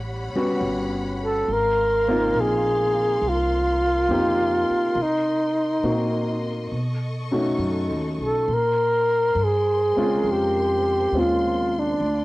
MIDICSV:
0, 0, Header, 1, 6, 480
1, 0, Start_track
1, 0, Tempo, 872093
1, 816, Time_signature, 4, 2, 24, 8
1, 3698, Tempo, 881057
1, 6709, End_track
2, 0, Start_track
2, 0, Title_t, "String section"
2, 0, Program_c, 0, 48
2, 0, Note_on_c, 0, 55, 68
2, 0, Note_on_c, 0, 73, 59
2, 0, Note_on_c, 0, 78, 62
2, 0, Note_on_c, 0, 83, 76
2, 797, Note_off_c, 0, 55, 0
2, 799, Note_off_c, 0, 83, 0
2, 802, Note_off_c, 0, 73, 0
2, 803, Note_off_c, 0, 78, 0
2, 811, Note_on_c, 0, 70, 68
2, 811, Note_on_c, 0, 84, 79
2, 815, Note_on_c, 0, 77, 65
2, 2715, Note_off_c, 0, 77, 0
2, 2734, Note_on_c, 0, 75, 59
2, 3672, Note_off_c, 0, 70, 0
2, 3672, Note_off_c, 0, 84, 0
2, 3680, Note_on_c, 0, 69, 67
2, 3684, Note_on_c, 0, 85, 75
2, 4640, Note_off_c, 0, 75, 0
2, 4642, Note_off_c, 0, 69, 0
2, 4643, Note_off_c, 0, 85, 0
2, 4649, Note_on_c, 0, 84, 75
2, 4651, Note_on_c, 0, 72, 58
2, 4656, Note_on_c, 0, 70, 63
2, 6554, Note_off_c, 0, 72, 0
2, 6556, Note_off_c, 0, 70, 0
2, 6574, Note_on_c, 0, 65, 65
2, 6579, Note_on_c, 0, 74, 60
2, 6709, Note_off_c, 0, 65, 0
2, 6709, Note_off_c, 0, 74, 0
2, 6709, Note_off_c, 0, 84, 0
2, 6709, End_track
3, 0, Start_track
3, 0, Title_t, "Flugelhorn"
3, 0, Program_c, 1, 56
3, 687, Note_on_c, 1, 69, 83
3, 840, Note_on_c, 1, 70, 97
3, 848, Note_off_c, 1, 69, 0
3, 1324, Note_on_c, 1, 68, 83
3, 1332, Note_off_c, 1, 70, 0
3, 1809, Note_on_c, 1, 65, 95
3, 1817, Note_off_c, 1, 68, 0
3, 2763, Note_on_c, 1, 63, 77
3, 2772, Note_off_c, 1, 65, 0
3, 3562, Note_off_c, 1, 63, 0
3, 4531, Note_on_c, 1, 69, 82
3, 4689, Note_on_c, 1, 70, 89
3, 4697, Note_off_c, 1, 69, 0
3, 5181, Note_on_c, 1, 68, 81
3, 5189, Note_off_c, 1, 70, 0
3, 5659, Note_on_c, 1, 67, 81
3, 5667, Note_off_c, 1, 68, 0
3, 6135, Note_on_c, 1, 65, 72
3, 6143, Note_off_c, 1, 67, 0
3, 6462, Note_on_c, 1, 62, 68
3, 6470, Note_off_c, 1, 65, 0
3, 6709, Note_off_c, 1, 62, 0
3, 6709, End_track
4, 0, Start_track
4, 0, Title_t, "Grand piano"
4, 0, Program_c, 2, 0
4, 0, Control_c, 2, 64, 127
4, 195, Note_on_c, 2, 55, 55
4, 196, Note_on_c, 2, 59, 53
4, 200, Note_on_c, 2, 66, 66
4, 202, Note_on_c, 2, 61, 52
4, 325, Note_off_c, 2, 55, 0
4, 326, Note_off_c, 2, 59, 0
4, 328, Note_off_c, 2, 66, 0
4, 329, Note_off_c, 2, 61, 0
4, 824, Control_c, 2, 64, 0
4, 918, Control_c, 2, 64, 127
4, 1145, Note_on_c, 2, 58, 62
4, 1147, Note_on_c, 2, 60, 58
4, 1154, Note_on_c, 2, 63, 57
4, 1154, Note_on_c, 2, 65, 68
4, 1279, Note_off_c, 2, 58, 0
4, 1280, Note_off_c, 2, 60, 0
4, 1283, Note_off_c, 2, 65, 0
4, 1284, Note_off_c, 2, 63, 0
4, 2257, Note_on_c, 2, 63, 48
4, 2258, Note_on_c, 2, 58, 54
4, 2261, Note_on_c, 2, 67, 60
4, 2262, Note_on_c, 2, 60, 50
4, 2554, Note_off_c, 2, 58, 0
4, 2554, Note_off_c, 2, 63, 0
4, 2556, Note_off_c, 2, 60, 0
4, 2556, Note_off_c, 2, 67, 0
4, 2742, Control_c, 2, 64, 0
4, 2827, Control_c, 2, 64, 127
4, 3212, Note_on_c, 2, 58, 49
4, 3215, Note_on_c, 2, 60, 44
4, 3215, Note_on_c, 2, 66, 52
4, 3216, Note_on_c, 2, 63, 44
4, 3512, Note_off_c, 2, 58, 0
4, 3514, Note_off_c, 2, 60, 0
4, 3514, Note_off_c, 2, 66, 0
4, 3515, Note_off_c, 2, 63, 0
4, 3703, Control_c, 2, 64, 0
4, 3805, Control_c, 2, 64, 127
4, 4022, Note_on_c, 2, 61, 54
4, 4025, Note_on_c, 2, 57, 58
4, 4025, Note_on_c, 2, 63, 53
4, 4027, Note_on_c, 2, 66, 64
4, 4159, Note_off_c, 2, 61, 0
4, 4161, Note_off_c, 2, 57, 0
4, 4161, Note_off_c, 2, 63, 0
4, 4162, Note_off_c, 2, 66, 0
4, 4666, Control_c, 2, 64, 0
4, 4775, Control_c, 2, 64, 127
4, 5467, Note_on_c, 2, 56, 58
4, 5470, Note_on_c, 2, 61, 55
4, 5471, Note_on_c, 2, 60, 54
4, 5475, Note_on_c, 2, 65, 69
4, 5602, Note_off_c, 2, 56, 0
4, 5604, Note_off_c, 2, 60, 0
4, 5604, Note_off_c, 2, 61, 0
4, 5606, Note_off_c, 2, 65, 0
4, 6110, Note_on_c, 2, 56, 47
4, 6113, Note_on_c, 2, 60, 41
4, 6118, Note_on_c, 2, 61, 43
4, 6118, Note_on_c, 2, 65, 51
4, 6402, Note_off_c, 2, 56, 0
4, 6404, Note_off_c, 2, 60, 0
4, 6406, Note_off_c, 2, 61, 0
4, 6406, Note_off_c, 2, 65, 0
4, 6585, Control_c, 2, 64, 0
4, 6709, End_track
5, 0, Start_track
5, 0, Title_t, "Upright bass"
5, 0, Program_c, 3, 32
5, 0, Note_on_c, 3, 33, 74
5, 166, Note_off_c, 3, 33, 0
5, 335, Note_on_c, 3, 31, 76
5, 800, Note_off_c, 3, 31, 0
5, 815, Note_on_c, 3, 32, 73
5, 1280, Note_off_c, 3, 32, 0
5, 1286, Note_on_c, 3, 34, 79
5, 1755, Note_off_c, 3, 34, 0
5, 1770, Note_on_c, 3, 36, 74
5, 2237, Note_off_c, 3, 36, 0
5, 2249, Note_on_c, 3, 41, 75
5, 2561, Note_off_c, 3, 41, 0
5, 2726, Note_on_c, 3, 48, 76
5, 3196, Note_off_c, 3, 48, 0
5, 3209, Note_on_c, 3, 46, 78
5, 3679, Note_off_c, 3, 46, 0
5, 3693, Note_on_c, 3, 47, 68
5, 4161, Note_off_c, 3, 47, 0
5, 4169, Note_on_c, 3, 42, 74
5, 4341, Note_off_c, 3, 42, 0
5, 4341, Note_on_c, 3, 39, 49
5, 4492, Note_off_c, 3, 39, 0
5, 4496, Note_on_c, 3, 35, 48
5, 4646, Note_off_c, 3, 35, 0
5, 4658, Note_on_c, 3, 46, 73
5, 5124, Note_off_c, 3, 46, 0
5, 5132, Note_on_c, 3, 43, 77
5, 5444, Note_off_c, 3, 43, 0
5, 5612, Note_on_c, 3, 41, 71
5, 6081, Note_off_c, 3, 41, 0
5, 6096, Note_on_c, 3, 39, 77
5, 6562, Note_off_c, 3, 39, 0
5, 6575, Note_on_c, 3, 38, 77
5, 6709, Note_off_c, 3, 38, 0
5, 6709, End_track
6, 0, Start_track
6, 0, Title_t, "Muted upright bass strokes"
6, 184, Note_on_c, 9, 29, 33
6, 239, Note_off_c, 9, 29, 0
6, 2586, Note_on_c, 9, 29, 34
6, 2641, Note_off_c, 9, 29, 0
6, 5467, Note_on_c, 9, 29, 34
6, 5521, Note_off_c, 9, 29, 0
6, 6709, End_track
0, 0, End_of_file